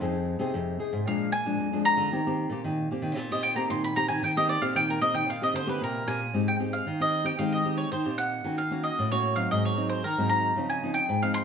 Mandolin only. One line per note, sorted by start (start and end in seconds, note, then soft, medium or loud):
1.07 1.32 F5 medium
1.32 1.82 G#5 medium
1.85 2.61 A#5 loud
3.32 3.44 D#5 medium
3.43 3.56 G5 loud
3.56 3.69 A#5 medium
3.70 3.83 C6 medium
3.84 3.96 B5 medium
3.96 4.08 A#5 loud
4.08 4.22 G#5 medium
4.24 4.36 G5 medium
4.37 4.49 D#5 medium
4.49 4.62 D5 medium
4.62 4.75 F5 medium
4.76 4.89 G5 loud
4.90 5.01 A#4 medium
5.02 5.15 D#5 medium
5.14 5.28 G5 medium
5.30 5.42 F5 medium
5.43 5.55 D#5 medium
5.56 5.68 C5 loud
5.69 5.81 B4 medium
5.84 6.19 A#4 medium
6.08 6.48 G#5 loud
6.48 6.55 G5 medium
6.73 7.00 F5 medium
7.02 7.25 D#5 medium
7.26 7.38 G5 medium
7.39 7.53 F5 medium
7.52 7.77 D#5 medium
7.77 7.91 C#5 medium
7.92 8.16 C5 medium
8.18 8.55 F#5 medium
8.58 8.85 F5 medium
8.83 9.11 D#5 medium
9.11 9.36 C#5 medium
9.36 9.49 F5 medium
9.51 9.63 D#5 medium
9.65 9.89 C#5 medium
9.89 10.03 C5 medium
10.04 10.31 A#4 medium
10.29 10.69 A#5 loud
10.70 10.94 G#5 medium
10.94 11.22 G5 medium
11.22 11.34 F5 medium
11.34 11.44 C6 loud